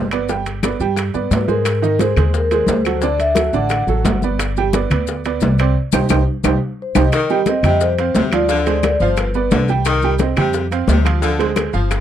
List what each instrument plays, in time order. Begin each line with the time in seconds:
Already playing: upright bass G1
0.11 upright piano B3 B4 D5, high bongo, high timbale, claves, maracas
0.29 upright piano G3 G4 G5, high bongo, high conga, maracas
0.46 high bongo, high conga, high timbale, maracas
0.63 upright piano B3 B4 D5, high bongo, high conga, high timbale, low timbale, claves, maracas
0.80 upright bass G2, upright piano G3 G4 G5, high conga, maracas
0.96 high bongo, high conga, high timbale, claves, maracas
1.14 upright bass G2, upright piano B3 B4 D5, vibraphone B4, high bongo, high conga, maracas
1.31 upright bass G#2, high bongo, low bongo, high conga, high timbale, low timbale, maracas
1.48 upright piano G#3 G#4 C5, vibraphone A#4, high bongo, high conga, maracas
1.65 high bongo, high conga, high timbale, claves, maracas
1.82 upright piano D#3 D#4 D#5, high bongo, high conga, maracas
1.99 upright piano G#3 G#4 C5, vibraphone C5, high bongo, high conga, high timbale, low timbale, maracas
2.16 upright bass D#2, upright piano G#3 G#4 C5, high conga, low conga, high timbale, claves, maracas
2.33 vibraphone A#4, high bongo, high conga, maracas
2.50 upright piano G#3 G#4 C5, high bongo, high conga, high timbale, maracas
2.67 upright bass D2, vibraphone C5, high bongo, low bongo, high conga, low timbale, maracas
2.85 upright piano F#3 F#4 A4, high bongo, high timbale, claves, maracas
3.01 upright piano D3 D4 D5, vibraphone D5, high bongo, high conga, maracas
3.18 vibraphone E5, high bongo, high conga, high timbale, maracas
3.35 upright piano F#3 F#4 A4, high bongo, high conga, high timbale, low timbale, claves, maracas
3.53 upright bass A1, upright piano D3 D4 D5, vibraphone F#5, high conga, maracas
3.69 high bongo, high conga, high timbale, claves, maracas
3.87 upright bass A1, upright piano F#3 F#4 A4, high bongo, high conga, maracas
4.04 upright bass G1, high bongo, low bongo, high conga, high timbale, low timbale, maracas
4.22 upright piano B3 B4 D5, high bongo, high conga, maracas
4.39 high bongo, high conga, high timbale, claves, maracas
4.56 upright piano G3 G4 G5, high bongo, high conga, maracas
4.73 upright piano B3 B4 D5, high bongo, high conga, high timbale, low timbale, maracas
4.90 upright bass D2, upright piano B3 B4 D5, high conga, low conga, high timbale, claves, maracas
5.07 high bongo, high conga, maracas
5.25 upright piano B3 B4 D5, high bongo, high conga, high timbale, maracas
5.41 upright bass C2, high bongo, low bongo, high conga, low timbale, maracas
5.58 upright piano C4 C5 D5, high bongo, high timbale, claves, maracas
5.92 upright bass C2, upright piano D#4 G4 C5, low bongo, high conga, high timbale, claves, maracas
6.09 upright bass C2, upright piano D#4 G4 C5, low bongo, high conga, high timbale, claves, maracas
6.44 upright bass C2, upright piano D#4 G4 C5, low bongo, high conga, high timbale, claves, maracas
6.82 vibraphone C5
6.95 upright bass C2, upright piano D#4 G4 C5, low bongo, high conga, high timbale, claves, maracas
6.99 vibraphone D#5
7.12 saxophone section D#3, high bongo, high conga, high timbale, claves, maracas
7.30 upright piano G3 G4 G5, high bongo, high conga, maracas
7.46 upright piano C4 C5 D#5, vibraphone D#5, high bongo, high conga, high timbale, low timbale, maracas
7.63 upright bass F2, saxophone section C3, upright piano G3 G4 G5, high conga, low conga, high timbale, claves, maracas
7.81 vibraphone C5, high bongo, high conga, maracas
7.98 upright piano C4 C5 F5, high bongo, high conga, high timbale, maracas
8.15 upright bass D2, saxophone section C3, high bongo, low bongo, high conga, low timbale, maracas
8.32 upright piano F3 F4 F5, vibraphone D5, high bongo, high conga, high timbale, claves, maracas
8.49 saxophone section D3, upright piano F3 F4 F5, high bongo, high conga, maracas
8.66 upright piano G#3 G#4 C5, vibraphone D5, high bongo, high conga, high timbale, maracas
8.83 high bongo, high conga, high timbale, low timbale, claves, maracas
9.00 upright bass G1, saxophone section F3, upright piano F3 F4 F5, vibraphone C5, high conga, maracas
9.17 vibraphone B4, high bongo, high conga, high timbale, claves, maracas
9.34 upright piano B3 B4 D5, high bongo, high conga, maracas
9.51 upright bass C2, saxophone section D3, high bongo, low bongo, high conga, high timbale, low timbale, maracas
9.68 upright piano G3 G4 G5, high bongo, maracas
9.85 saxophone section D#3, high bongo, high conga, high timbale, claves, maracas
10.02 upright piano G3 G4 G5, high bongo, high conga, maracas
10.19 upright piano C4 C5 D#5, high bongo, high conga, high timbale, low timbale, maracas
10.36 upright bass F2, saxophone section C3, upright piano G3 G4 G5, high conga, low conga, high timbale, claves, maracas
10.53 high bongo, high conga, maracas
10.71 upright piano C4 C5 F5, high bongo, high conga, high timbale, maracas
10.87 upright bass D2, saxophone section C3, high bongo, low bongo, high conga, low timbale, maracas
11.05 upright piano F3 F4 F5, high bongo, high conga, high timbale, claves, maracas
11.22 saxophone section D3, upright piano F3 F4 F5, high bongo, high conga, maracas
11.39 upright piano G#3 G#4 C5, high bongo, high conga, high timbale, maracas
11.56 high bongo, high conga, high timbale, low timbale, claves, maracas
11.73 upright bass G1, upright piano F3 F4 F5, saxophone section F3, high conga, maracas
11.91 high bongo, high conga, high timbale, claves, maracas